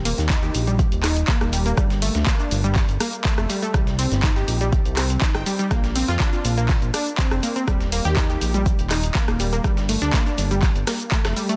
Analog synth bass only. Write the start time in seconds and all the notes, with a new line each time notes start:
Already playing: D#1
0.18 D#2
0.55 A#1
0.92 D#1
1.41 D#1
1.77 G1
2.15 D2
2.51 G1
2.89 G1
3.38 F1
3.74 C2
4.12 G1
4.48 A#1
4.85 C2
5.35 G1
5.71 A#1
6.08 F2
6.45 A#1
6.82 A#1
7.31 F1
7.68 D#1
8.05 D#2
8.41 A#1
8.79 D#1
9.28 D#1
9.64 G1
10.02 D2
10.38 G1
10.76 G1
11.25 F1